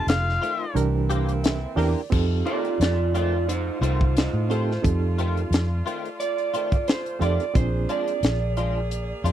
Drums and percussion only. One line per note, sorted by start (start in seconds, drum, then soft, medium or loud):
0.08 snare loud
0.08 closed hi-hat medium
0.29 snare soft
0.43 closed hi-hat medium
0.76 closed hi-hat medium
1.10 closed hi-hat medium
1.29 closed hi-hat soft
1.44 snare loud
1.44 closed hi-hat medium
1.78 open hi-hat medium
2.12 kick loud
2.12 crash medium
2.47 closed hi-hat medium
2.65 closed hi-hat soft
2.81 snare loud
2.81 closed hi-hat medium
3.15 closed hi-hat medium
3.49 closed hi-hat medium
3.83 closed hi-hat medium
4.01 kick medium
4.17 snare loud
4.17 closed hi-hat medium
4.51 closed hi-hat medium
4.71 snare soft
4.84 kick loud
4.84 closed hi-hat medium
5.19 closed hi-hat medium
5.37 closed hi-hat soft
5.53 snare loud
5.53 closed hi-hat medium
5.87 closed hi-hat medium
6.05 closed hi-hat soft
6.20 closed hi-hat medium
6.38 closed hi-hat soft
6.54 closed hi-hat medium
6.72 kick medium
6.72 closed hi-hat soft
6.88 snare loud
6.88 closed hi-hat medium
7.06 closed hi-hat soft
7.22 closed hi-hat medium
7.40 closed hi-hat soft
7.55 kick loud
7.55 closed hi-hat medium
7.89 closed hi-hat medium
8.08 closed hi-hat soft
8.23 snare loud
8.23 closed hi-hat medium
8.57 closed hi-hat medium
8.91 closed hi-hat medium
9.26 closed hi-hat medium